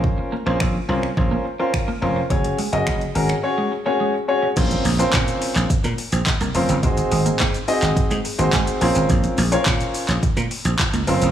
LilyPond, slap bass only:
\new Staff \with { instrumentName = "Slap bass" } { \clef bass \time 4/4 \key bes \minor \tempo 4 = 106 bes,,8 r16 bes,,16 bes,,8 c,8 bes,,8 r4 f,,8 | ges,,8 r16 ges,,16 ges,,8 aes,,8 r2 | bes,,8 bes,,8 bes,8 r16 bes,,16 r16 bes,16 r16 bes,,16 r16 c,16 f,,16 ges,,16 | aes,,8 aes,,8 aes,8 r16 aes,,16 r16 aes,16 r16 aes,,16 aes,16 r16 bes,,16 aes,,16 |
bes,,8 bes,,8 bes,8 r16 bes,,16 r16 bes,16 r16 bes,,16 r16 des,16 ges,,16 f,,16 | }